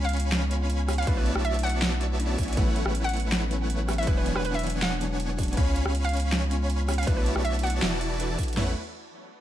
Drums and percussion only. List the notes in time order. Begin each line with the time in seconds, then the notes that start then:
0.04 closed hi-hat
0.09 closed hi-hat
0.13 closed hi-hat
0.17 closed hi-hat
0.20 closed hi-hat
0.32 snare, closed hi-hat
0.51 closed hi-hat
0.70 closed hi-hat
0.88 cross-stick, open hi-hat
0.93 closed hi-hat
0.98 closed hi-hat
1.03 closed hi-hat
1.07 kick, closed hi-hat
1.26 closed hi-hat
1.36 cross-stick
1.45 closed hi-hat
1.54 closed hi-hat
1.59 closed hi-hat
1.63 closed hi-hat
1.67 closed hi-hat
1.70 closed hi-hat
1.82 snare, closed hi-hat
2.01 closed hi-hat
2.20 closed hi-hat
2.38 kick, open hi-hat
2.43 closed hi-hat
2.48 closed hi-hat
2.53 closed hi-hat
2.57 kick, closed hi-hat
2.76 closed hi-hat
2.86 cross-stick
2.95 closed hi-hat
3.04 closed hi-hat
3.09 closed hi-hat
3.13 closed hi-hat
3.17 closed hi-hat
3.20 closed hi-hat
3.32 snare, closed hi-hat
3.51 closed hi-hat
3.70 closed hi-hat
3.89 cross-stick, open hi-hat
3.93 closed hi-hat
3.98 closed hi-hat
4.03 closed hi-hat
4.07 kick, closed hi-hat
4.26 closed hi-hat
4.36 cross-stick
4.45 closed hi-hat
4.54 closed hi-hat
4.59 closed hi-hat
4.63 closed hi-hat
4.67 closed hi-hat
4.70 closed hi-hat
4.82 snare, closed hi-hat
5.01 closed hi-hat
5.20 closed hi-hat
5.39 kick, open hi-hat
5.43 closed hi-hat
5.48 closed hi-hat
5.53 closed hi-hat
5.57 kick, closed hi-hat
5.76 closed hi-hat
5.86 cross-stick
5.95 closed hi-hat
6.04 closed hi-hat
6.09 closed hi-hat
6.14 closed hi-hat
6.17 closed hi-hat
6.20 closed hi-hat
6.32 snare, closed hi-hat
6.51 closed hi-hat
6.70 closed hi-hat
6.89 cross-stick, open hi-hat
6.93 closed hi-hat
6.98 closed hi-hat
7.03 closed hi-hat
7.07 kick, closed hi-hat
7.26 closed hi-hat
7.36 cross-stick
7.45 closed hi-hat
7.55 closed hi-hat
7.59 closed hi-hat
7.64 closed hi-hat
7.67 closed hi-hat
7.70 closed hi-hat
7.82 snare, closed hi-hat
8.01 closed hi-hat
8.20 closed hi-hat
8.39 kick, open hi-hat
8.43 closed hi-hat
8.48 closed hi-hat
8.53 closed hi-hat
8.57 snare, floor tom, crash